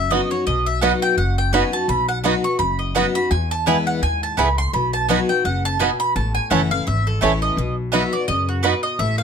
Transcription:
Already playing: F#1 F#2 E5
0.10 F#3 B3 D#4 F#4 D#5
0.30 D#4 F#4 C#5
0.47 B1 B2 D#5
0.66 E5
0.81 F#3 B3 D#4 F#4 D#5 F#5 B5
1.02 G5
1.17 F#1 F#2 F#5
1.38 G5
1.53 F#3 B3 D#4 F#4 D#5 G#5 B5
1.72 D#4 F#4 A5
1.88 B1 B2 B5
2.09 F#5
2.24 F#3 B3 D#4 F#4 D#5 B5
2.44 D#4 F#4 C#6
2.59 F#1 F#2 B5
2.79 D#5
2.95 F#3 B3 D#4 F#4 D#5 F#5 B5
3.15 D#4 F#4 B5
3.31 E2 G#5
3.51 A5
3.66 E3 G#3 B3 E4 G#4 B4 G#5
3.87 F#5
4.02 D#2 G#2 G#5
4.23 A5
4.37 C#2 A2 B3 E4 G#4 B4 G#5 B5
4.58 C6
4.73 B1 B2 B5
4.93 A5
5.09 F#3 B3 D#4 F#4 D#5 G#5 B5
5.29 D#4 F#4 G5
5.45 F#1 C#3 F#5
5.65 A5
5.79 B2 B3 D#4 F#4 D#5 G#5 B5
6.00 B5
6.16 A1 A2 A5
6.35 G#5
6.50 F#1 E3 A3 C#4 E4 A4 C#5 F#5 A5
6.71 C#4 E4 F5
6.87 G#1 E2 E5
7.07 A4
7.21 A1 E3 A3 C#4 E4 A4 C#5 A5
7.42 D#5
7.57 B1 B2
7.92 F#3 B3 D#4 F#4 D#5 E5 B5
8.13 D#4 F#4 D5
8.28 F#2 C#3 D#5
8.49 F#4
8.63 B2 B3 D#4 F#4 B4 D#5 B5
8.83 D#5
8.99 A1 A2 E5
9.18 F5

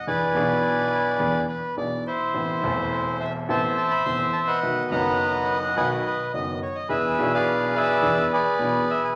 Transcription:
0.07 E2 E3 B3 D4 G#4 B4 D5 G#5
0.33 B1 B2 E3 B3 D4 G#4
1.19 E2 E3 B3 D4 G#4
1.49 B4
1.76 B1 B2 E3 B3 D4 G#4 D5
2.07 E4 C5
2.34 A1 A2 E3 B3 C4 A4
2.61 E1 E2 E3 A3 C4
2.65 A4
3.20 E5
3.49 A1 A2 E3 B3 C4 A4 C5 E5 A5
3.78 A5
3.91 B5
4.05 E1 E2 E3 B3 C4 A4 C6
4.33 A5
4.47 B4 D#5 F#5
4.63 B1 B2 D#3 F#3 B3 F#4
4.90 F#1 F#2 D#3 F#3 B3 F#4 D#5 F#5 A#5
5.76 B1 B2 D#3 F#3 B3 F#4 B4 D#5 G#5
5.91 F#5
6.06 B4
6.34 F#1 F#2 D#3 F#3 B3 F#4 D#5
6.62 C#5
6.75 D#5
6.89 E2 E3 B3 D4 G#4 B4 E5
7.17 B1 B2 E3 B3 D4 G#4
7.34 G#4 D5 F5
7.75 G#4 B4 E5
8.02 E2 E3 B3 D4 G#4
8.33 G#4 B4 D5
8.59 B1 B2 E3 B3 D4 G#4
8.90 E5
9.04 G#5

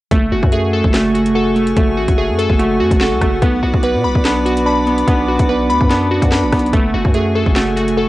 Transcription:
0.11 F#1 A3 F#5 G#5 C#6, kick, closed hi-hat
0.32 F#1 F#4
0.43 F#2, kick
0.52 A3 G#4, closed hi-hat
0.73 A4
0.84 F#1, kick
0.94 A3 F#4, snare, closed hi-hat
1.15 F#4, closed hi-hat
1.26 F1, closed hi-hat
1.35 F#4 A4
1.56 A3, closed hi-hat
1.67 closed hi-hat
1.76 F#1 A3, kick, closed hi-hat
1.97 A1 F#4
2.08 F#1, kick, closed hi-hat
2.18 A3 G#4
2.29 F#2
2.39 A4, closed hi-hat
2.50 F#1, kick
2.59 A3 F#4, closed hi-hat
2.80 F#2 F#4
2.91 F#1, kick, closed hi-hat
3.01 F#4 A4, snare
3.12 C#2
3.21 F#1 A3, kick, cross-stick, closed hi-hat
3.42 B1 B3 B4 D5 D6, kick, closed hi-hat
3.63 B1 F#4
3.74 B1, kick
3.83 B3 B4, closed hi-hat
3.94 B2
4.04 B1 B5
4.15 B1, kick
4.25 B3 D4, snare, closed hi-hat
4.46 F#4, closed hi-hat
4.57 closed hi-hat
4.66 D4 B5
4.87 B3, closed hi-hat
4.98 closed hi-hat
5.08 B1 B3, kick, closed hi-hat
5.28 F#4
5.39 B1, kick, closed hi-hat
5.49 B3 B4
5.70 D2 B5, closed hi-hat
5.81 F#2, kick
5.90 B3 D4, snare, closed hi-hat
6.11 F#4
6.22 F#2, kick, closed hi-hat
6.32 D4 B5, snare
6.43 A1
6.52 B1 B3, kick, cross-stick, closed hi-hat, open hi-hat
6.59 closed hi-hat
6.66 closed hi-hat
6.73 F#1 A3 G#5 C#6, kick, closed hi-hat
6.94 F#1 F#4
7.05 F#2, kick
7.14 A3 G#4, closed hi-hat
7.35 A4
7.46 F#1, kick
7.56 A3 F#4, snare, closed hi-hat
7.77 F#4, closed hi-hat
7.88 F1, closed hi-hat
7.97 F#4 A4

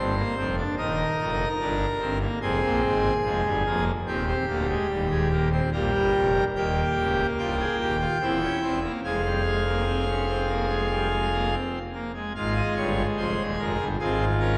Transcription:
Already playing: G1 G2 C4 C5
0.17 A#3
0.37 F1 F2 C4
0.57 D4
0.77 D#1 D#2 D#4 A#4
1.19 F1 F2
1.60 G1 G2 D4
2.01 G1 G2 C4
2.21 A#3
2.41 F1 F2 C4 G#4
2.63 A#1 A#2
2.83 G#1 G#2
3.24 F1 F2 G#3
3.45 G1 G2
3.65 F1 F2 A#3
4.07 D#1 D#2 C4 G4
4.27 C4
4.49 D1 D2 A#3
4.69 G#3
4.89 D#1 D#2 G3
5.10 G#3
5.31 A#3
5.52 C4
5.72 A#1 A#2 G3 G4 A#4
5.93 G1 G2
6.15 F1 F2
6.56 D#1 D#2 A#3 G4 G5
6.98 C#1 C#2
7.38 C1 C2 F4 G5
7.60 G#4
7.80 D#1 D#2 G4
8.01 F4
8.22 E1 E2 C4 E4
8.42 C#4
8.63 E1 E2 C4
8.84 A#3
9.04 F1 F2 G#3 G#4 F5
9.25 G3
9.46 G#3
9.67 A#3
9.87 C4
10.08 C#4
10.29 C4
10.49 A#3
10.70 G#3
10.90 G3
11.10 G#3
11.32 A#3
11.53 C4
11.94 A#3
12.14 G#3
12.35 G#1 G#2 G#3 F4 F5
12.56 D#5
12.76 G1 G2 C#5
13.17 F1 F2 G#4 C5
13.38 D#1 D#2
13.58 F1 F2 A#4
13.79 G1 G2
14.00 G#1 G#2 C4 F4 G#4
14.40 C#4 A#4

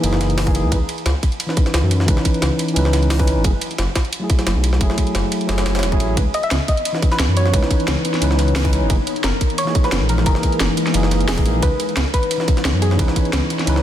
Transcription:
0.01 F#1 E3 A#3 D#4, closed hi-hat, ride
0.06 G#4
0.13 snare
0.21 snare, closed hi-hat, ride
0.30 closed hi-hat
0.38 snare, closed hi-hat, open hi-hat
0.46 E3 A#3 D#4 G#4, kick, closed hi-hat, ride
0.54 E3 A#3 D#4 G#4, closed hi-hat, ride
0.64 C#2
0.71 C#2 E3 C#4 D#4 B4, kick, closed hi-hat, ride
0.89 closed hi-hat, ride
0.98 closed hi-hat
1.06 C#2, snare, closed hi-hat, ride
1.23 kick, closed hi-hat, ride
1.32 closed hi-hat
1.40 closed hi-hat, ride
1.47 E3 C#4 D#4, snare
1.51 B4
1.57 kick, closed hi-hat, ride
1.66 snare, closed hi-hat
1.74 C#2, snare, closed hi-hat, ride
1.83 F#2
1.91 closed hi-hat, ride
2.00 snare
2.06 C#2 E3 C#4 D#4, kick, closed hi-hat, ride
2.10 B4
2.17 snare
2.25 kick, closed hi-hat, ride
2.34 closed hi-hat
2.42 C#2, snare, closed hi-hat, ride
2.59 closed hi-hat, ride
2.68 closed hi-hat
2.74 C#2 E3 C#4 D#4, closed hi-hat, ride
2.78 B4
2.85 snare
2.93 snare, closed hi-hat, ride
3.02 closed hi-hat
3.10 snare, closed hi-hat, open hi-hat
3.18 E3 C#4 D#4 B4, kick, closed hi-hat, ride
3.27 closed hi-hat, ride
3.37 G#1
3.43 F#1 F#3 A3 E4 G#4, kick, closed hi-hat, ride
3.61 closed hi-hat, ride
3.71 closed hi-hat
3.78 F#1, snare, closed hi-hat, ride
3.95 kick, snare, closed hi-hat, ride
4.05 closed hi-hat
4.13 closed hi-hat, ride
4.19 F#3 A3 E4
4.24 G#4
4.30 kick, closed hi-hat, ride
4.39 snare, closed hi-hat
4.47 F#1, snare, closed hi-hat, ride
4.56 B1
4.64 closed hi-hat, ride
4.73 snare
4.78 F#1 F#3 A3 E4, kick, closed hi-hat, ride
4.83 G#4
4.90 snare
4.98 kick, closed hi-hat, ride
5.07 closed hi-hat
5.15 F#1, snare, closed hi-hat, ride
5.32 closed hi-hat, ride
5.41 closed hi-hat
5.47 F#1 F#3 A3 E4, snare, closed hi-hat, ride, swell
5.51 G#4
5.58 snare, ride
5.66 snare, closed hi-hat, ride
5.75 snare, closed hi-hat, ride
5.79 snare, closed hi-hat, ride
5.83 E1, snare, ride
5.91 F#3 A3 E4 G#4, kick, closed hi-hat
6.00 A1, closed hi-hat, ride
6.16 C#2 E3 B3 C#4 D#4 B4 C#5, kick, closed hi-hat, ride
6.34 D#5, closed hi-hat, ride
6.43 E5, closed hi-hat
6.51 C#2, snare, closed hi-hat, ride
6.68 D#5, kick, closed hi-hat, ride
6.77 closed hi-hat
6.85 closed hi-hat, ride
6.92 E3 C#4 D#4, snare
6.97 B4
7.02 kick, closed hi-hat, ride
7.11 B4, snare, closed hi-hat
7.19 C#2, snare, closed hi-hat, ride
7.29 F#2
7.37 C#5, closed hi-hat, ride
7.46 snare
7.51 C#2 E3 C#4 D#4, kick, closed hi-hat, ride
7.56 B4
7.63 snare
7.71 kick, closed hi-hat, ride
7.80 closed hi-hat
7.88 C#2, snare, closed hi-hat, ride
8.05 closed hi-hat, ride
8.14 snare, closed hi-hat
8.19 C#2 E3 C#4 D#4, closed hi-hat, ride
8.24 B4
8.31 snare
8.39 snare, closed hi-hat, ride
8.48 closed hi-hat
8.56 snare, closed hi-hat, open hi-hat
8.64 E3 C#4 D#4 B4, kick, closed hi-hat, ride
8.73 closed hi-hat, ride
8.82 G#1
8.89 F#1 E3 G#3 A#3 D#4 G#4 A#4, kick, closed hi-hat, ride
9.07 closed hi-hat, ride
9.16 closed hi-hat
9.24 F#1 A#4, snare, closed hi-hat, ride
9.41 kick, closed hi-hat, ride
9.50 closed hi-hat
9.58 C#5, closed hi-hat, ride
9.65 E3 A#3 D#4, snare
9.69 G#4
9.75 kick, closed hi-hat, ride
9.84 B4, snare, closed hi-hat
9.92 F#1, snare, closed hi-hat, ride
10.01 A#1
10.09 A#4, closed hi-hat, ride
10.18 snare
10.24 F#1 E3 A#3 D#4 A#4, kick, closed hi-hat, ride
10.29 G#4
10.35 snare
10.43 kick, closed hi-hat, ride
10.52 closed hi-hat
10.60 F#1, snare, closed hi-hat, ride
10.77 closed hi-hat, ride
10.87 snare, closed hi-hat
10.92 F#1 E3 A#3 D#4, closed hi-hat, ride
10.97 G#4
11.03 snare
11.11 snare, closed hi-hat, ride
11.21 closed hi-hat
11.28 E1 G#4, snare, closed hi-hat, open hi-hat
11.36 E3 A#3 D#4 G#4, kick, closed hi-hat, ride
11.45 A#1, closed hi-hat, ride
11.61 C#2 E3 B3 C#4 D#4 B4 C#5, kick, closed hi-hat, ride
11.80 closed hi-hat, ride
11.89 closed hi-hat
11.97 C#2, snare, closed hi-hat, ride
12.14 B4, kick, closed hi-hat, ride
12.23 closed hi-hat
12.31 closed hi-hat, ride
12.37 E3 C#4 D#4, snare
12.42 B4
12.48 kick, closed hi-hat, ride
12.57 snare, closed hi-hat
12.65 C#2, snare, closed hi-hat, ride
12.74 F#2
12.82 G#4, closed hi-hat, ride
12.91 snare
12.97 C#2 E3 C#4 D#4, kick, closed hi-hat, ride
13.01 B4
13.08 snare
13.16 kick, closed hi-hat, ride
13.25 closed hi-hat
13.33 C#2, snare, closed hi-hat, ride
13.50 closed hi-hat, ride
13.59 snare, closed hi-hat
13.65 C#2 E3 C#4 D#4, closed hi-hat, ride
13.69 B4
13.76 snare

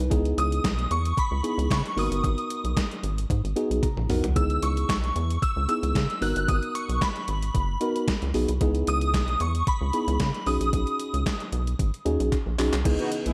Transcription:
0.00 B4
0.10 C#2 B3 D#4 E4 G#4, kick, closed hi-hat
0.25 closed hi-hat
0.37 C#2 D#6, closed hi-hat
0.52 closed hi-hat
0.64 B1, kick, snare, clap, closed hi-hat
0.79 closed hi-hat
0.91 E2 C#6, closed hi-hat
1.05 closed hi-hat
1.17 B5, kick, closed hi-hat
1.31 C#2
1.43 B3 D#4 E4 G#4, closed hi-hat
1.58 C#2, closed hi-hat
1.71 C#3 C#6, kick, snare, clap, closed hi-hat
1.86 closed hi-hat
1.96 G#1 A#3 D#4 F#4 A#4 D#6, open hi-hat
2.03 B3
2.11 G1, closed hi-hat
2.24 G#1, kick, closed hi-hat
2.38 closed hi-hat
2.50 closed hi-hat
2.64 B1, closed hi-hat
2.77 kick, snare, clap, closed hi-hat
2.91 closed hi-hat
3.03 G#1, closed hi-hat
3.18 closed hi-hat
3.30 G#2, kick, closed hi-hat
3.44 G#1, closed hi-hat
3.56 B3 D#4 F#4 G#4, closed hi-hat
3.70 B1, closed hi-hat
3.83 A#5, kick, closed hi-hat, high tom
3.97 A#1, mid tom
4.09 B1 B3 D#4 F#4 A#4 F#5, mid tom, open hi-hat
4.24 C2, closed hi-hat, floor tom
4.36 C#2 B3 D#4 E4 G#4 E6, kick, closed hi-hat
4.50 closed hi-hat
4.62 C#2 C#6, closed hi-hat
4.77 closed hi-hat
4.89 B1 C#6, kick, snare, clap, closed hi-hat
5.04 closed hi-hat
5.16 E2, closed hi-hat
5.30 closed hi-hat
5.42 E6, kick, closed hi-hat
5.56 C#2
5.68 B3 D#4 E4 G#4 E6, closed hi-hat
5.83 C#2, closed hi-hat
5.95 C#3, kick, snare, clap, closed hi-hat
6.10 closed hi-hat
6.21 G#1 B3 D#4 F#4 A#4 F#6, open hi-hat
6.36 G1, closed hi-hat
6.48 G#1 D#6, kick, closed hi-hat
6.63 closed hi-hat
6.75 C#6, closed hi-hat
6.89 B1, closed hi-hat
7.01 B5, kick, snare, clap, closed hi-hat
7.16 closed hi-hat
7.28 G#1, closed hi-hat
7.42 closed hi-hat
7.55 F#1, kick, closed hi-hat
7.81 B3 D#4 F#4 A#4, closed hi-hat
7.96 closed hi-hat
8.08 kick, snare, clap, closed hi-hat
8.22 C#2, closed hi-hat
8.34 B1 B3 D#4 F#4 G#4, open hi-hat
8.48 C2, closed hi-hat
8.61 C#2 B3 D#4 E4 G#4, kick, closed hi-hat
8.75 closed hi-hat
8.87 C#2 D#6, closed hi-hat
9.01 closed hi-hat
9.14 B1, kick, snare, clap, closed hi-hat
9.28 closed hi-hat
9.40 E2 C#6, closed hi-hat
9.55 closed hi-hat
9.67 B5, kick, closed hi-hat
9.81 C#2
9.93 B3 D#4 E4 G#4, closed hi-hat
10.07 C#2, closed hi-hat
10.20 C#3, kick, snare, clap, closed hi-hat
10.34 closed hi-hat
10.46 B1 C#4 D#4 F#4 G#4 D#6, open hi-hat
10.60 A#1, closed hi-hat
10.73 B1, kick, closed hi-hat
10.87 closed hi-hat
11.00 closed hi-hat
11.14 C#2, closed hi-hat
11.26 kick, snare, clap, closed hi-hat
11.40 closed hi-hat
11.52 B1, closed hi-hat
11.67 closed hi-hat
11.79 G#1, kick, closed hi-hat
11.94 closed hi-hat
12.05 D#2 C#4 D#4 F#4 G#4, closed hi-hat
12.20 B1, closed hi-hat
12.32 kick, clap, closed hi-hat
12.46 A#1
12.58 B1 C#4 D#4 F#4 G#4, clap, open hi-hat
12.73 C2, clap, closed hi-hat
12.85 C#2 C#3 E3 B3 D#4 E4 G#4 D#5, kick, closed hi-hat, crash
12.99 B3 D#4 F#4, closed hi-hat
13.12 closed hi-hat
13.26 B1 G#3 E4 G#4, closed hi-hat

